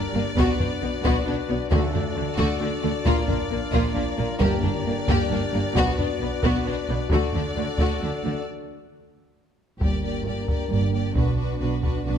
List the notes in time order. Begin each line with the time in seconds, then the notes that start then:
Already playing: D4 G4 A#4 D5
0.13 G1 G2 A#3
0.35 B1 B2 B3 D4 F#4 B4, taiko
0.58 B1 B2 B3 D4, taiko low
0.81 B1 B2 B3
1.03 B1 B2 B3 F#4, taiko
1.26 B1 B2 B3 D4
1.48 B1 B2 B3
1.70 D2 D3 A3 D4 F#4 A4 D5, taiko
1.93 D2 D3 A3 D4, taiko low
2.15 D2 D3 A3
2.37 D2 D3 A3 F#4, taiko
2.60 D2 D3 A3 D4
2.82 D2 D3 A3
3.04 A#1 A#2 A#3 D4 F4 A#4, taiko
3.28 A#1 A#2 A#3 D4, taiko low
3.50 A#1 A#2 A#3
3.73 A#1 A#2 A#3 F4, taiko
3.95 A#1 A#2 A#3 D4
4.18 A#1 A#2 A#3
4.39 G1 G2 A#3 D4 G4 A#4 D5, taiko
4.63 G1 G2 A#3 D4, taiko low
4.86 G1 G2 A#3
5.07 G1 G2 A#3 G4, taiko
5.30 G1 G2 A#3 D4
5.52 G1 G2 A#3
5.74 B1 B2 B3 D4 F#4 B4, taiko
5.97 B1 B2 B3 D4, taiko low
6.20 B1 B2 B3
6.43 B1 B2 B3 F#4, taiko
6.67 B1 B2 B3 D4
6.88 B1 B2 B3
7.08 D2 D3 A3 D4 F#4 A4, taiko
7.12 F#4 D5
7.33 D2 D3 A3 D4, taiko low
7.55 D2 D3 A3
7.78 D2 D3 A3 F#4, taiko
8.00 D2 D3 A3 D4
8.23 D2 D3 A3
9.80 G1 G2 A#3 D4 G4 A#4 D5, taiko
10.02 A#3 G4 D5
10.25 G1 G2 A#3 G4 D5
10.48 A#3 G4 D5, taiko
10.69 G1 G2 A#3 G4 D5
10.92 A#3 G4 D5
11.15 B1 B2 D4 F#4 B4, taiko
11.37 D4 F#4 B4
11.60 B1 B2 D4 F#4 B4
11.83 D4 F#4 B4, taiko
12.05 B1 B2 D4 F#4 B4